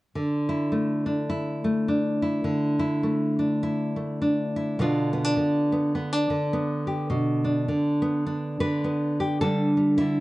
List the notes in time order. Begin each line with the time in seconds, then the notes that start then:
0.15 D3
0.49 E4
0.72 A3
1.06 D4
1.30 E4
1.64 A3
1.88 D4
2.22 E4
2.44 D3
2.79 E4
3.03 A3
3.39 D4
3.63 E4
3.96 A3
4.22 D4
4.56 E4
4.79 B2 D3 B3 D4 F4
5.13 B3
5.24 D4
5.37 D3
5.72 B3
5.95 B3
6.13 D4
6.30 D3
6.53 B3
6.87 G4
7.10 B2
7.44 D4
7.68 D3
8.02 B3
8.27 D4
8.60 D3 B4
8.84 B3
9.20 G4
9.41 D3 G3 D4 A4
9.77 G3
9.98 D3 E4